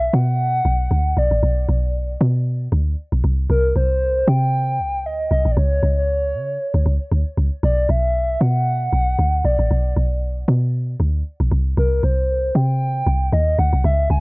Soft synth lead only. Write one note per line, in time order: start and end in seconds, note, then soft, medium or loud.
0.00 0.16 E5 loud
0.14 1.20 F#5 loud
1.18 2.21 D5 loud
3.50 3.74 A#4 loud
3.77 4.30 C5 loud
4.28 5.07 G5 loud
5.06 5.31 D#5 loud
5.32 5.53 D#5 medium
5.52 5.59 D5 medium
5.57 5.97 C#5 loud
5.98 7.34 C#5 loud
7.64 7.92 D5 loud
7.90 8.43 E5 loud
8.41 9.46 F#5 loud
9.45 10.48 D5 medium
11.78 12.05 A#4 loud
12.04 12.57 C5 medium
12.56 13.34 G5 loud
13.33 13.60 D#5 loud
13.59 13.84 F#5 loud
13.85 14.09 E5 loud
14.11 14.20 G#5 loud